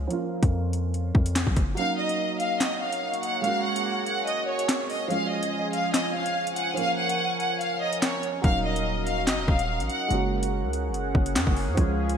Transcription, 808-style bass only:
0, 0, Header, 1, 2, 480
1, 0, Start_track
1, 0, Key_signature, -6, "minor"
1, 0, Tempo, 416667
1, 123, Time_signature, 4, 2, 24, 8
1, 14024, End_track
2, 0, Start_track
2, 0, Title_t, "808-style bass"
2, 0, Program_c, 0, 38
2, 491, Note_on_c, 0, 41, 98
2, 1290, Note_off_c, 0, 41, 0
2, 1322, Note_on_c, 0, 41, 104
2, 1675, Note_off_c, 0, 41, 0
2, 1690, Note_on_c, 0, 34, 101
2, 1799, Note_off_c, 0, 34, 0
2, 1805, Note_on_c, 0, 30, 104
2, 2034, Note_off_c, 0, 30, 0
2, 9723, Note_on_c, 0, 27, 106
2, 10684, Note_on_c, 0, 30, 96
2, 10701, Note_off_c, 0, 27, 0
2, 10811, Note_on_c, 0, 27, 103
2, 10828, Note_off_c, 0, 30, 0
2, 10915, Note_off_c, 0, 27, 0
2, 10921, Note_on_c, 0, 27, 110
2, 11291, Note_on_c, 0, 34, 96
2, 11308, Note_off_c, 0, 27, 0
2, 11398, Note_off_c, 0, 34, 0
2, 11645, Note_on_c, 0, 30, 109
2, 12251, Note_on_c, 0, 37, 96
2, 12268, Note_off_c, 0, 30, 0
2, 12548, Note_on_c, 0, 30, 96
2, 12565, Note_off_c, 0, 37, 0
2, 12829, Note_off_c, 0, 30, 0
2, 12842, Note_on_c, 0, 30, 107
2, 13083, Note_on_c, 0, 42, 97
2, 13100, Note_off_c, 0, 30, 0
2, 13204, Note_off_c, 0, 42, 0
2, 13211, Note_on_c, 0, 30, 105
2, 13451, Note_on_c, 0, 42, 99
2, 13468, Note_off_c, 0, 30, 0
2, 13558, Note_off_c, 0, 42, 0
2, 13564, Note_on_c, 0, 37, 110
2, 14024, Note_off_c, 0, 37, 0
2, 14024, End_track
0, 0, End_of_file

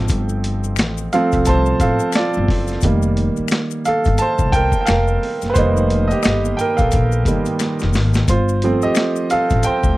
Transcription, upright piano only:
0, 0, Header, 1, 2, 480
1, 0, Start_track
1, 0, Tempo, 681818
1, 68, Time_signature, 4, 2, 24, 8
1, 7023, End_track
2, 0, Start_track
2, 0, Title_t, "Upright piano"
2, 0, Program_c, 0, 0
2, 0, Control_c, 0, 64, 127
2, 0, Note_on_c, 0, 53, 45
2, 0, Note_on_c, 0, 57, 41
2, 0, Note_on_c, 0, 60, 49
2, 0, Note_on_c, 0, 69, 69
2, 0, Note_on_c, 0, 72, 70
2, 0, Note_on_c, 0, 77, 90
2, 0, Note_on_c, 0, 79, 87
2, 794, Note_off_c, 0, 77, 0
2, 794, Note_on_c, 0, 77, 94
2, 800, Note_off_c, 0, 53, 0
2, 800, Note_on_c, 0, 53, 59
2, 804, Note_off_c, 0, 57, 0
2, 804, Note_on_c, 0, 57, 54
2, 807, Note_off_c, 0, 60, 0
2, 807, Note_on_c, 0, 60, 68
2, 809, Note_off_c, 0, 69, 0
2, 809, Note_on_c, 0, 69, 69
2, 1023, Note_off_c, 0, 69, 0
2, 1033, Note_on_c, 0, 81, 93
2, 1038, Note_off_c, 0, 77, 0
2, 1047, Note_off_c, 0, 72, 0
2, 1047, Note_on_c, 0, 72, 84
2, 1130, Note_off_c, 0, 53, 0
2, 1132, Note_off_c, 0, 57, 0
2, 1134, Note_off_c, 0, 60, 0
2, 1254, Note_off_c, 0, 81, 0
2, 1262, Note_off_c, 0, 72, 0
2, 1272, Note_on_c, 0, 77, 85
2, 1289, Note_on_c, 0, 69, 65
2, 1502, Note_off_c, 0, 69, 0
2, 1515, Note_on_c, 0, 74, 75
2, 1517, Note_off_c, 0, 77, 0
2, 1529, Note_on_c, 0, 65, 60
2, 1867, Note_off_c, 0, 74, 0
2, 1874, Note_off_c, 0, 65, 0
2, 1996, Note_on_c, 0, 51, 48
2, 1998, Control_c, 0, 64, 0
2, 2001, Note_off_c, 0, 79, 0
2, 2001, Note_on_c, 0, 55, 46
2, 2005, Note_on_c, 0, 58, 50
2, 2126, Control_c, 0, 64, 127
2, 2328, Note_off_c, 0, 51, 0
2, 2331, Note_off_c, 0, 55, 0
2, 2333, Note_off_c, 0, 58, 0
2, 2714, Note_on_c, 0, 77, 92
2, 2730, Note_on_c, 0, 69, 74
2, 2935, Note_off_c, 0, 77, 0
2, 2943, Note_off_c, 0, 69, 0
2, 2948, Note_on_c, 0, 81, 89
2, 2968, Note_on_c, 0, 72, 73
2, 3182, Note_off_c, 0, 72, 0
2, 3184, Note_on_c, 0, 79, 96
2, 3195, Note_off_c, 0, 81, 0
2, 3204, Note_on_c, 0, 70, 68
2, 3374, Note_off_c, 0, 79, 0
2, 3382, Note_off_c, 0, 70, 0
2, 3384, Note_on_c, 0, 79, 66
2, 3418, Note_on_c, 0, 77, 83
2, 3427, Note_off_c, 0, 79, 0
2, 3442, Note_on_c, 0, 70, 68
2, 3778, Note_off_c, 0, 77, 0
2, 3791, Note_off_c, 0, 70, 0
2, 3870, Note_on_c, 0, 71, 71
2, 3898, Note_on_c, 0, 72, 82
2, 3909, Note_off_c, 0, 71, 0
2, 3916, Note_on_c, 0, 51, 46
2, 3920, Note_on_c, 0, 55, 45
2, 3925, Note_on_c, 0, 58, 52
2, 3927, Note_on_c, 0, 63, 61
2, 4273, Note_off_c, 0, 63, 0
2, 4277, Note_on_c, 0, 75, 78
2, 4297, Note_off_c, 0, 72, 0
2, 4308, Note_on_c, 0, 67, 66
2, 4374, Note_off_c, 0, 75, 0
2, 4385, Note_on_c, 0, 75, 84
2, 4391, Note_off_c, 0, 67, 0
2, 4412, Note_on_c, 0, 67, 62
2, 4624, Note_off_c, 0, 67, 0
2, 4625, Note_on_c, 0, 79, 81
2, 4634, Note_off_c, 0, 75, 0
2, 4651, Note_on_c, 0, 70, 73
2, 4660, Note_off_c, 0, 79, 0
2, 4686, Note_off_c, 0, 70, 0
2, 4764, Note_on_c, 0, 77, 80
2, 4791, Note_on_c, 0, 69, 53
2, 5107, Note_off_c, 0, 55, 0
2, 5108, Note_off_c, 0, 51, 0
2, 5114, Note_off_c, 0, 58, 0
2, 5118, Note_on_c, 0, 55, 38
2, 5119, Note_on_c, 0, 51, 46
2, 5124, Note_on_c, 0, 58, 50
2, 5330, Note_off_c, 0, 51, 0
2, 5330, Note_off_c, 0, 55, 0
2, 5333, Note_off_c, 0, 58, 0
2, 5557, Note_off_c, 0, 77, 0
2, 5571, Note_off_c, 0, 69, 0
2, 5837, Control_c, 0, 64, 0
2, 5839, Note_on_c, 0, 72, 70
2, 5844, Note_on_c, 0, 65, 55
2, 5977, Control_c, 0, 64, 127
2, 6081, Note_on_c, 0, 53, 55
2, 6085, Note_on_c, 0, 57, 45
2, 6089, Note_on_c, 0, 60, 61
2, 6192, Note_off_c, 0, 65, 0
2, 6216, Note_on_c, 0, 75, 88
2, 6226, Note_on_c, 0, 67, 65
2, 6227, Note_off_c, 0, 72, 0
2, 6528, Note_off_c, 0, 75, 0
2, 6533, Note_off_c, 0, 67, 0
2, 6552, Note_on_c, 0, 77, 100
2, 6565, Note_on_c, 0, 69, 77
2, 6767, Note_off_c, 0, 53, 0
2, 6768, Note_off_c, 0, 57, 0
2, 6771, Note_off_c, 0, 60, 0
2, 6774, Note_off_c, 0, 77, 0
2, 6781, Note_off_c, 0, 69, 0
2, 6788, Note_on_c, 0, 79, 89
2, 6802, Note_on_c, 0, 72, 68
2, 7023, Note_off_c, 0, 72, 0
2, 7023, Note_off_c, 0, 79, 0
2, 7023, End_track
0, 0, End_of_file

